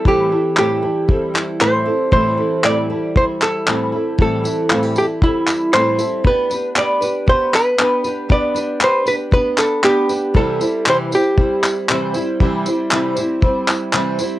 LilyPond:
<<
  \new Staff \with { instrumentName = "Hollow-body jazz guitar" } { \time 4/4 \key a \phrygian \tempo 4 = 117 g'4 g'2 c''4 | c''4 d''4 c''8 a'4. | a'4. g'8 e'4 c''4 | b'4 d''4 c''8 b'4. |
d''4 c''8 b'8 b'8 a'8 g'4 | a'4 c''8 g'2~ g'8~ | g'2. r4 | }
  \new Staff \with { instrumentName = "Nylon-string guitar" } { \time 4/4 \key a \phrygian <e c' e' g'>8 e'8 g'8 e'8 c'8 e'8 c'8 e'8 | e8 e'8 g'8 e'8 c'8 e'8 c'8 e'8 | e8 e'8 f'16 g'16 e'8 c'8 e'8 c'8 e'8 | b8 d'8 g'8 d'8 b8 d'8 b8 d'8 |
b8 d'8 g'8 d'8 b8 d'8 b8 d'8 | g8 e'8 g'8 e'8 c'8 e'8 c'8 e'8 | g8 e'8 g'8 e'8 c'8 e'8 c'8 e'8 | }
  \new Staff \with { instrumentName = "Nylon-string guitar" } { \time 4/4 \key a \phrygian <a, e g c' e' a'>8 <g c' e' a'>8 <a, e g c' e' a'>8 <g c' e' a'>8 <g c' e' a'>4 <a, e g c' e' a'>8 <g c' e' a'>8 | <a, e g c' e' a'>8 <g c' e' a'>8 <a, e g c' e' a'>8 <g c' e' a'>8 <g c' e' a'>4 <a, e g c' e' a'>8 <g c' e' a'>8 | <a, e g c' e' a'>8 <g c' e' a'>8 <a, e g c' e' a'>8 <g c' e' a'>8 <g c' e' a'>4 <a, e g c' e' a'>8 <g c' e' a'>8 | <b d' g' b'>8 <d' g' b'>8 <b d' g' b'>8 <d' g' b'>8 <b d' g' b'>4 <b d' g' b'>8 <d' g' b'>8 |
<b d' g' b'>8 <d' g' b'>8 <b d' g' b'>8 <d' g' b'>8 <b d' g' b'>4 <b d' g' b'>8 <d' g' b'>8 | <c e g c' e' c''>8 <g c' e' c''>8 <c e g c' e' c''>8 <g c' e' c''>8 <g c' e' c''>4 <c e g c' e' c''>8 <g c' e' c''>8 | <c e g c' e' c''>8 <g c' e' c''>8 <c e g c' e' c''>8 <g c' e' c''>8 <g c' e' c''>4 <c e g c' e' c''>8 <g c' e' c''>8 | }
  \new DrumStaff \with { instrumentName = "Drums" } \drummode { \time 4/4 bd4 hc4 bd8 hc8 hc4 | bd4 hc4 bd8 hc8 hc4 | bd8 tamb8 hc8 tamb8 bd8 <hc tamb>8 hc8 tamb8 | bd8 tamb8 hc8 tamb8 bd8 <hc tamb>8 hc8 tamb8 |
bd8 tamb8 hc8 tamb8 bd8 <hc tamb>8 hc8 tamb8 | bd8 tamb8 hc8 tamb8 bd8 <hc tamb>8 hc8 tamb8 | bd8 tamb8 hc8 tamb8 bd8 <hc tamb>8 hc8 tamb8 | }
>>